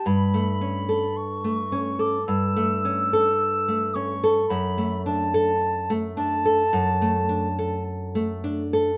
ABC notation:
X:1
M:4/4
L:1/16
Q:1/4=54
K:D
V:1 name="Flute"
b4 c'3 d' e'6 c'2 | b2 a4 a6 z4 |]
V:2 name="Nylon-string guitar"
G,, A, C A2 A, C A G,, A, C A2 A, C A | F,, A, D A2 A, D A F,, A, D A2 A, D A |]